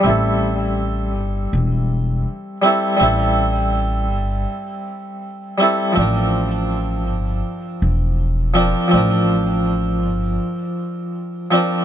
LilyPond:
<<
  \new Staff \with { instrumentName = "Harpsichord" } { \time 4/4 \key a \phrygian \tempo 4 = 81 <g c' e' a'>2.~ <g c' e' a'>8 <g c' e' a'>8 | <g c' e' a'>2.~ <g c' e' a'>8 <g c' e' a'>8 | <f c' d' bes'>2.~ <f c' d' bes'>8 <f c' d' bes'>8 | <f c' d' bes'>2.~ <f c' d' bes'>8 <f c' d' bes'>8 | }
  \new Staff \with { instrumentName = "Upright bass" } { \clef bass \time 4/4 \key a \phrygian a,,4. g,,8 e,,4 r4 | a,,4. g,,8 r2 | a,,4. g,,8 r8 e,,4 r8 | a,,4. g,,8 r2 | }
>>